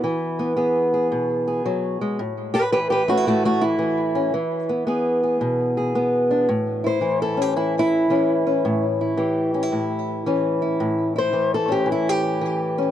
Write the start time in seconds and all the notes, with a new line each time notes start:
Already playing: E4
0.04 E3
0.39 B3
0.56 B3 G#4
0.94 G#4
1.12 B2
1.48 G#4
1.66 F#3
2.01 G#3
2.19 A2
2.54 G4 B4
2.72 E3 G4 B4
2.90 G4 B4
3.08 A3 C#4 F#4
3.17 E4
3.27 A2 A3 F#4
3.45 A3 F#4
3.61 E3 E4
3.79 E3
4.15 C#4
4.34 E3
4.69 B3
4.87 B3 G#4
5.24 G#4
5.41 B2
5.77 G#4
5.95 B3
6.31 D4
6.49 A2
6.84 E4 C5
7.01 E3 E4
7.22 A4
7.37 C#4
7.42 G4
7.56 E3 E4
7.79 E4
8.10 E3 C#4
8.47 C#4
8.65 A2
9.01 E4
9.17 E3 G4
9.54 C#4
9.63 E4
9.72 A2
10.26 E3 C#4
10.62 E4
10.80 A2
11.16 E4 C5
11.33 E3
11.54 A4
11.68 C#4 G4
11.86 E3
11.92 E4
12.09 G4
12.41 E3
12.78 C#4